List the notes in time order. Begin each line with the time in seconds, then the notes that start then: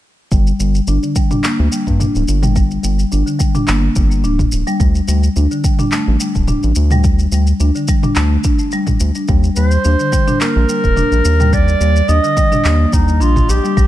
0.31 G1 G3, kick, shaker
0.47 shaker
0.59 G1 G3, shaker
0.75 shaker
0.87 G1 D4, shaker
1.03 D3, shaker
1.16 G3, kick, shaker
1.31 D4, mid tom, shaker
1.44 A#3, clap, shaker
1.59 D2
1.72 G3, shaker
1.87 G2, kick, shaker
2.00 D4, mid tom, shaker
2.15 D1, shaker
2.28 G1, shaker
2.43 G3, mid tom, shaker
2.56 G3, kick, shaker
2.71 shaker
2.83 G1 G3, shaker
2.99 shaker
3.12 G1 D4, shaker
3.26 D3, shaker
3.39 G3, kick, shaker
3.55 D4, mid tom, shaker
3.68 G1 A#3, clap, shaker
3.96 G1 G3, kick, shaker
4.11 shaker
4.24 D1 D4, shaker
4.39 kick, mid tom, shaker
4.52 D1, shaker
4.67 G3, shaker
4.80 D2 G3, kick, shaker
4.95 shaker
5.08 D2 G3, shaker
5.23 shaker
5.36 D2 D4, shaker
5.51 D3, shaker
5.64 G3, kick, shaker
5.79 D4, mid tom, shaker
5.92 A3, clap, shaker
6.07 A1
6.20 G3, shaker
6.35 D1, kick, shaker
6.48 D4, mid tom, shaker
6.63 A1, shaker
6.75 D2, shaker
6.91 G3, mid tom, shaker
7.04 G3, kick, shaker
7.19 shaker
7.32 D2 G3, shaker
7.47 shaker
7.60 D2 D4, shaker
7.75 D3, shaker
7.88 G3, kick, shaker
8.03 D4, mid tom, shaker
8.16 D2 A3, clap, shaker
8.44 D4, kick, shaker
8.59 shaker
8.71 G3, shaker
8.87 kick, mid tom, shaker
9.00 D2, shaker
9.15 D4, shaker
9.28 D#2 G3, kick, shaker
9.43 shaker
9.56 D#2 G3 C5, shaker
9.71 shaker
9.84 D#2 D4, shaker
9.99 D3, shaker
10.12 G3, kick, shaker
10.28 D4, mid tom, shaker
10.41 A#3 A#4, clap, shaker
10.56 A#1
10.69 G3, shaker
10.84 D#1, kick, shaker
10.97 D4, mid tom, shaker
11.12 A#1, shaker
11.25 D#2, shaker
11.40 G3, mid tom, shaker
11.53 G3 D5, kick, shaker
11.68 shaker
11.80 D#2 G3, shaker
11.96 shaker
12.09 D#2 D4 D#5, shaker
12.24 D3, shaker
12.37 G3, kick, shaker
12.52 D4, mid tom, shaker
12.65 D#2 A#3, clap, shaker
12.93 D#2 G3 D#4, kick, shaker
13.08 shaker
13.20 A#1 D4 F4, shaker
13.36 kick, mid tom, shaker
13.48 A#1 G4, shaker
13.64 G3, shaker
13.77 A#1 G3, kick, shaker